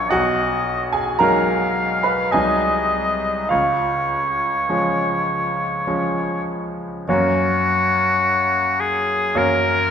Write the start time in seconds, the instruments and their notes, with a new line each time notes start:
Already playing: grand piano A#1 F#3 A#3 C#4 F#5 G#5 F#6 G#6, oboe C#5
0.10 grand piano B1 F#4 F#5, oboe D#5
0.93 grand piano G#4 G#5
1.19 grand piano F#3 G#3 D#4 A#4 A#5, oboe F5
2.03 grand piano B4 B5
2.32 grand piano C2 F#3 G#3 D#4 G#4 G#5, oboe D#5
3.49 grand piano C#2 F4 F5, oboe C#5
4.69 grand piano F3 G#3 C#4
5.87 grand piano F3 G#3 C#4
7.09 grand piano F#2 F#3 A#3 C#4, oboe F#4
8.80 oboe G#4
9.35 grand piano F#2 F#3 A#3 C#4, oboe A#4